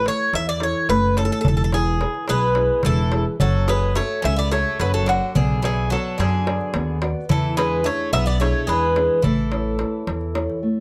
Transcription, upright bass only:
0.33 0.72 E2 medium
0.89 1.28 F#1 loud
1.45 2.03 E1 medium
2.29 2.68 B1 medium
2.85 3.24 E1 medium
3.40 3.99 F#1 medium
4.24 4.63 C#2 loud
4.79 5.18 F#1 loud
5.35 5.94 B1 medium
6.19 6.58 F#2 medium
6.74 7.13 D#2 loud
7.30 7.88 E2 loud
8.13 8.52 B1 loud
8.68 9.07 E2 medium
9.24 9.82 A1 medium
10.07 10.46 E2 loud

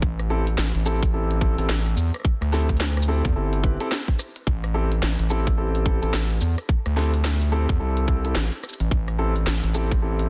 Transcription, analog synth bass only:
0.02 0.56 A1 loud
0.58 0.72 A1 loud
0.75 1.56 A1 loud
1.58 1.67 A1 loud
1.69 1.95 A1 loud
1.96 2.11 E2 loud
2.41 3.22 D2 loud
3.25 3.34 E2 medium
3.36 3.78 G1 loud
4.47 5.01 A1 loud
5.02 5.17 A1 loud
5.19 6.00 A1 loud
6.02 6.12 A1 loud
6.14 6.40 A1 loud
6.41 6.56 E2 loud
6.86 7.67 D2 loud
7.69 7.78 E2 loud
7.80 8.34 C2 loud
8.36 8.50 A1 loud
8.80 8.90 A1 loud
8.91 9.45 A1 loud
9.46 9.61 A1 loud
9.63 10.29 A1 loud

